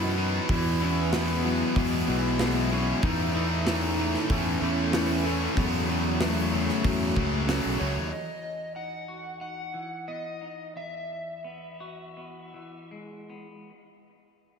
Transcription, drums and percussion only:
0.49 kick, open hi-hat
1.13 snare, open hi-hat
1.76 kick, open hi-hat
2.39 snare, open hi-hat
3.03 kick, open hi-hat
3.67 snare, open hi-hat
4.14 snare
4.30 kick, open hi-hat
4.93 snare, open hi-hat
5.57 kick, open hi-hat
6.21 snare, open hi-hat
6.69 snare
6.84 kick, open hi-hat
7.16 kick
7.49 snare, open hi-hat

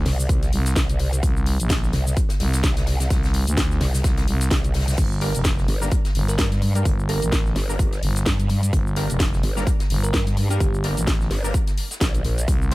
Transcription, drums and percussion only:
0.05 snare, open hi-hat
0.20 shaker
0.29 kick, closed hi-hat, shaker
0.43 snare, closed hi-hat, shaker
0.52 closed hi-hat, open hi-hat
0.66 snare, closed hi-hat, shaker
0.76 kick, snare, closed hi-hat, shaker
0.89 closed hi-hat, shaker
0.99 closed hi-hat, open hi-hat
1.13 closed hi-hat, shaker
1.23 kick, closed hi-hat, shaker
1.37 shaker
1.46 closed hi-hat, open hi-hat
1.60 closed hi-hat, shaker
1.70 kick, snare, closed hi-hat, shaker
1.83 snare, shaker
1.93 snare, closed hi-hat, open hi-hat
2.07 snare, shaker
2.17 kick, closed hi-hat, shaker
2.29 snare, closed hi-hat, shaker
2.40 snare, closed hi-hat, open hi-hat
2.53 snare, closed hi-hat, shaker
2.63 kick, snare, closed hi-hat, shaker
2.77 snare, closed hi-hat, shaker
2.87 snare, closed hi-hat, open hi-hat
3.00 snare, closed hi-hat, shaker
3.10 kick, snare, closed hi-hat, shaker
3.23 snare, closed hi-hat, shaker
3.34 closed hi-hat, open hi-hat
3.47 closed hi-hat, shaker
3.57 kick, snare, closed hi-hat, shaker
3.71 snare, shaker
3.81 snare, closed hi-hat, open hi-hat
3.94 snare, closed hi-hat, shaker
4.04 kick, snare, closed hi-hat, shaker
4.17 snare, closed hi-hat, shaker
4.28 closed hi-hat, open hi-hat
4.41 snare, closed hi-hat, shaker
4.50 kick, snare, closed hi-hat, shaker
4.64 closed hi-hat, shaker
4.74 snare, closed hi-hat, open hi-hat
4.81 snare, closed hi-hat
4.88 snare, closed hi-hat, shaker
4.92 snare, closed hi-hat
4.97 kick, closed hi-hat, crash, shaker
5.12 shaker
5.21 closed hi-hat, open hi-hat
5.35 closed hi-hat, shaker
5.44 kick, snare, closed hi-hat, shaker
5.58 snare, shaker
5.68 closed hi-hat, open hi-hat
5.82 snare, shaker
5.91 kick, closed hi-hat, shaker
6.05 snare, closed hi-hat, shaker
6.15 closed hi-hat, open hi-hat
6.28 snare, closed hi-hat, shaker
6.38 kick, snare, closed hi-hat, shaker
6.52 snare, closed hi-hat, shaker
6.62 closed hi-hat, open hi-hat
6.75 closed hi-hat, shaker
6.85 kick, closed hi-hat, shaker
6.99 shaker
7.09 closed hi-hat, open hi-hat
7.22 closed hi-hat, shaker
7.32 kick, snare, closed hi-hat, shaker
7.46 snare, shaker
7.56 snare, open hi-hat
7.70 shaker
7.79 kick, closed hi-hat, shaker
7.93 snare, closed hi-hat, shaker
8.03 closed hi-hat, open hi-hat
8.15 snare, closed hi-hat, shaker
8.26 kick, snare, closed hi-hat, shaker
8.40 closed hi-hat, shaker
8.49 closed hi-hat, open hi-hat
8.63 closed hi-hat, shaker
8.73 kick, closed hi-hat, shaker
8.87 shaker
8.96 closed hi-hat, open hi-hat
9.10 closed hi-hat, shaker
9.19 kick, snare, closed hi-hat, shaker
9.33 snare, shaker
9.43 closed hi-hat, open hi-hat
9.57 snare, shaker
9.67 kick, closed hi-hat, shaker
9.80 snare, closed hi-hat, shaker
9.90 open hi-hat
10.04 closed hi-hat, shaker
10.14 kick, snare, closed hi-hat, shaker
10.27 snare, closed hi-hat, shaker
10.37 closed hi-hat, open hi-hat
10.50 closed hi-hat, shaker
10.60 kick, closed hi-hat, shaker
10.74 shaker
10.84 closed hi-hat, open hi-hat
10.97 closed hi-hat, shaker
11.07 kick, snare, closed hi-hat, shaker
11.21 snare, shaker
11.31 snare, open hi-hat
11.44 shaker
11.54 kick, closed hi-hat, shaker
11.67 snare, closed hi-hat, shaker
11.78 closed hi-hat, open hi-hat
11.91 snare, closed hi-hat, shaker
12.00 kick, snare, closed hi-hat, shaker
12.14 closed hi-hat, shaker
12.25 closed hi-hat, open hi-hat
12.38 closed hi-hat, shaker
12.48 kick, closed hi-hat, shaker
12.62 shaker

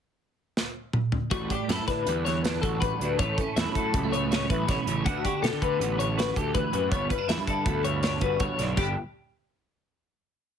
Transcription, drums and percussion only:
0.57 snare
0.93 mid tom
1.12 floor tom
1.31 kick, closed hi-hat
1.50 kick, closed hi-hat
1.69 snare, closed hi-hat
1.88 kick, snare, closed hi-hat
2.07 closed hi-hat
2.26 snare, closed hi-hat
2.44 snare, closed hi-hat
2.63 kick, closed hi-hat
2.82 kick, closed hi-hat
3.01 closed hi-hat
3.19 kick, closed hi-hat
3.38 kick, closed hi-hat
3.57 snare, closed hi-hat
3.75 kick, closed hi-hat
3.94 kick, closed hi-hat
4.13 closed hi-hat
4.32 snare, closed hi-hat
4.50 kick, closed hi-hat
4.68 kick, snare, closed hi-hat
4.87 closed hi-hat
5.06 kick, closed hi-hat
5.25 kick, closed hi-hat
5.44 snare, closed hi-hat
5.62 kick, closed hi-hat
5.81 closed hi-hat
6.00 closed hi-hat
6.19 snare, closed hi-hat
6.36 kick, closed hi-hat
6.55 kick, closed hi-hat
6.73 closed hi-hat
6.92 kick, closed hi-hat
7.10 kick, closed hi-hat
7.29 snare, closed hi-hat
7.47 kick, closed hi-hat
7.66 kick, closed hi-hat
7.85 closed hi-hat
8.03 snare, closed hi-hat
8.21 kick, closed hi-hat
8.40 kick, closed hi-hat
8.59 snare, closed hi-hat
8.77 kick, crash

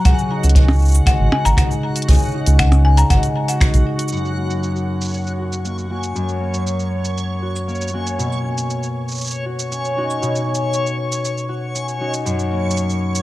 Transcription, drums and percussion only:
0.05 kick, closed hi-hat, shaker
0.19 shaker
0.44 shaker
0.49 closed hi-hat
0.55 kick, closed hi-hat, shaker
0.68 percussion blips, shaker
0.73 shaker
0.76 shaker
0.79 shaker
0.82 shaker
0.85 shaker
0.88 shaker
0.91 shaker
0.95 shaker
1.06 kick, closed hi-hat, shaker
1.32 percussion blips
1.46 shaker
1.57 finger snap, kick, closed hi-hat, shaker
1.71 shaker
1.96 closed hi-hat, shaker
2.02 closed hi-hat
2.08 kick, closed hi-hat, shaker
2.12 closed hi-hat, shaker
2.15 shaker
2.19 shaker
2.22 shaker
2.25 shaker
2.28 shaker
2.46 closed hi-hat, shaker
2.59 finger snap, kick, closed hi-hat, shaker
2.72 closed hi-hat, percussion blips, shaker
2.97 closed hi-hat, shaker
3.10 kick, closed hi-hat, shaker
3.23 closed hi-hat, shaker
3.48 closed hi-hat, shaker
3.61 finger snap, kick, closed hi-hat, shaker
3.74 closed hi-hat, shaker
3.99 closed hi-hat, shaker
4.08 shaker
4.12 shaker
4.17 shaker
4.25 shaker
4.50 shaker
4.63 shaker
4.76 shaker
5.01 shaker
5.05 shaker
5.08 shaker
5.11 shaker
5.14 shaker
5.17 shaker
5.21 shaker
5.24 shaker
5.27 shaker
5.52 shaker
5.65 shaker
5.78 shaker
6.03 shaker
6.16 shaker
6.29 shaker
6.54 shaker
6.67 shaker
6.79 shaker
7.05 shaker
7.18 shaker
7.56 shaker
7.69 shaker
7.75 shaker
7.81 shaker
7.88 shaker
8.07 shaker
8.20 shaker
8.32 shaker
8.58 shaker
8.70 shaker
8.83 shaker
9.08 shaker
9.11 shaker
9.15 shaker
9.18 shaker
9.21 shaker
9.24 shaker
9.27 shaker
9.31 shaker
9.34 shaker
9.59 shaker
9.72 shaker
9.85 shaker
10.10 shaker
10.23 shaker
10.36 shaker
10.55 shaker
10.73 shaker
10.87 shaker
11.12 shaker
11.25 shaker
11.38 shaker
11.75 shaker
11.88 shaker
12.14 shaker
12.26 shaker
12.39 shaker
12.71 shaker
12.77 shaker
12.90 shaker
13.15 shaker

